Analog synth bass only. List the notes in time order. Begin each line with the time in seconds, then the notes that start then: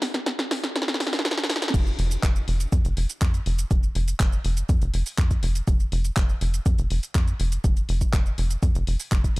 1.74 F1
1.99 F1
2.23 F1
2.48 F1
2.72 F2
2.85 F1
2.97 F1
3.22 F2
3.46 F1
3.71 F1
3.95 F1
4.20 F1
4.45 F1
4.69 F2
4.82 F1
4.94 F1
5.18 F2
5.43 F1
5.68 F1
5.92 F1
6.17 F1
6.41 F1
6.66 F2
6.78 F1
6.91 F1
7.15 F2
7.40 F1
7.64 F1
7.89 F1
8.13 F1
8.38 F1
8.63 F2
8.75 F1
8.87 F1
9.12 F1